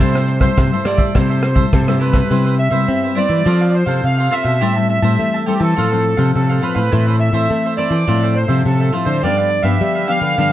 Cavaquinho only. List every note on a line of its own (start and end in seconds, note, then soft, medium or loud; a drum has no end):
0.00 0.13 E4 medium
0.00 0.13 A4 medium
0.00 0.14 C5 medium
0.00 0.13 E5 medium
0.14 0.41 A4 soft
0.14 0.40 C5 soft
0.14 0.39 E5 soft
0.40 0.70 A4 soft
0.40 0.70 C5 medium
0.40 0.69 E5 medium
0.72 0.84 A4 soft
0.72 0.85 C5 soft
0.72 0.85 E5 soft
0.84 0.99 E4 soft
0.84 0.98 A4 soft
0.84 0.97 C5 medium
0.84 0.96 E5 soft
0.98 1.14 A4 medium
0.98 1.13 C5 medium
0.98 1.13 E5 medium
1.15 1.28 E4 medium
1.15 1.29 A4 medium
1.15 1.29 C5 medium
1.15 1.28 E5 medium
1.30 1.42 A4 soft
1.30 1.42 C5 soft
1.30 1.42 E5 soft
1.43 muted cavaquinho stroke soft
1.55 1.86 A4 medium
1.55 1.85 C5 medium
1.55 1.85 E5 medium
1.87 1.99 A4 soft
1.87 2.00 C5 soft
1.87 2.01 E5 soft
2.00 2.14 E4 medium
2.00 2.13 A4 medium
2.00 2.13 C5 medium
2.00 2.11 E5 medium
2.13 2.29 A4 soft
2.13 2.28 C5 soft
2.13 2.28 E5 soft
2.30 2.44 E4 medium
2.30 2.44 B4 medium
2.30 2.44 C5 medium
2.30 2.44 E5 medium
2.45 2.57 B4 soft
2.45 2.57 C5 soft
2.45 2.57 E5 soft
2.58 muted cavaquinho stroke soft
2.71 3.01 B4 medium
2.71 3.01 C5 medium
2.71 3.00 E5 medium
3.03 3.15 B4 soft
3.03 3.15 C5 soft
3.03 3.16 E5 soft
3.15 3.29 E4 medium
3.15 3.30 B4 medium
3.15 3.28 C5 medium
3.15 3.27 E5 medium
3.29 3.44 B4 soft
3.29 3.44 C5 soft
3.29 3.43 E5 soft
3.45 3.59 F4 medium
3.45 3.59 A4 medium
3.45 3.60 C5 medium
3.45 3.60 F5 medium
3.61 3.73 A4 soft
3.61 3.73 C5 soft
3.61 3.73 F5 soft
3.73 muted cavaquinho stroke soft
3.86 4.17 A4 medium
3.86 4.16 C5 medium
3.86 4.15 F5 medium
4.18 4.30 A4 soft
4.18 4.31 C5 soft
4.18 4.31 F5 soft
4.30 4.45 F4 medium
4.30 4.44 A4 medium
4.30 4.43 C5 medium
4.30 4.42 F5 medium
4.43 4.60 A4 soft
4.43 4.59 C5 soft
4.43 4.59 F5 medium
4.61 4.74 G4 medium
4.61 4.75 C5 medium
4.61 4.75 E5 medium
4.61 4.75 A5 medium
4.76 4.88 C5 soft
4.76 4.89 E5 soft
4.76 4.89 A5 soft
4.89 muted cavaquinho stroke soft
5.02 5.32 C5 medium
5.02 5.32 E5 medium
5.02 5.31 A5 medium
5.34 5.46 C5 soft
5.34 5.46 E5 soft
5.34 5.47 A5 soft
5.46 5.60 G4 medium
5.46 5.60 C5 medium
5.46 5.60 E5 medium
5.46 5.58 A5 medium
5.60 5.75 C5 soft
5.60 5.75 E5 soft
5.60 5.74 A5 medium
5.76 5.90 F4 medium
5.76 5.90 A4 medium
5.76 5.91 C5 medium
5.76 5.91 F5 medium
5.92 6.04 A4 soft
5.92 6.04 C5 soft
5.92 6.04 F5 soft
6.05 muted cavaquinho stroke soft
6.17 6.47 A4 medium
6.17 6.47 C5 medium
6.17 6.46 F5 medium
6.49 6.61 A4 soft
6.49 6.62 C5 soft
6.49 6.62 F5 soft
6.62 6.76 F4 medium
6.62 6.76 A4 medium
6.62 6.75 C5 medium
6.62 6.73 F5 medium
6.75 6.91 A4 soft
6.75 6.90 C5 soft
6.75 6.90 F5 medium
6.91 7.05 E4 medium
6.91 7.05 A4 medium
6.91 7.06 C5 medium
6.91 7.06 E5 medium
7.07 7.19 A4 soft
7.07 7.19 C5 soft
7.07 7.19 E5 medium
7.20 muted cavaquinho stroke soft
7.33 7.63 A4 medium
7.33 7.62 C5 medium
7.33 7.62 E5 medium
7.65 7.77 A4 soft
7.65 7.77 C5 soft
7.65 7.78 E5 soft
7.77 7.91 E4 medium
7.77 7.91 A4 medium
7.77 7.90 C5 medium
7.77 7.89 E5 medium
7.90 8.06 A4 soft
7.90 8.05 C5 soft
7.90 8.05 E5 soft
8.07 8.21 F4 medium
8.07 8.21 A4 medium
8.07 8.21 C5 medium
8.07 8.21 E5 medium
8.22 8.34 A4 soft
8.22 8.34 C5 soft
8.22 8.34 E5 medium
8.35 muted cavaquinho stroke soft
8.48 8.78 A4 medium
8.48 8.78 C5 medium
8.48 8.77 E5 medium
8.80 8.92 A4 soft
8.80 8.92 C5 soft
8.80 8.93 E5 soft
8.92 9.07 F4 medium
8.92 9.06 A4 medium
8.92 9.05 C5 medium
8.92 9.04 E5 medium
9.05 9.21 A4 soft
9.05 9.21 C5 soft
9.05 9.20 E5 soft
9.22 9.36 D4 medium
9.22 9.36 G4 medium
9.22 9.37 B4 medium
9.22 9.36 F5 medium
9.37 9.49 G4 soft
9.37 9.50 B4 soft
9.37 9.50 F5 soft
9.50 muted cavaquinho stroke soft
9.63 9.93 G4 medium
9.63 9.93 B4 medium
9.63 9.92 F5 medium
9.95 10.07 G4 soft
9.95 10.07 B4 soft
9.95 10.08 F5 soft
10.07 10.22 D4 medium
10.07 10.21 G4 medium
10.07 10.20 B4 medium
10.07 10.19 F5 medium
10.21 10.37 G4 soft
10.21 10.36 B4 soft
10.21 10.36 F5 soft
10.38 10.51 D4 medium
10.38 10.52 G4 medium
10.38 10.52 B4 medium
10.38 10.52 F5 medium